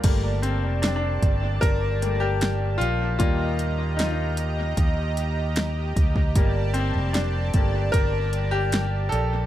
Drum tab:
CC |x---------------|----------------|----------------|
HH |x-x-x-x-x-x-x-x-|x-x-x-x-x-x-x-x-|x-x-x-x-x-x-x-x-|
SD |----o-------o---|----o-------o---|----o-------o---|
BD |o-----o-o-------|o-------o-----oo|o-----o-o-------|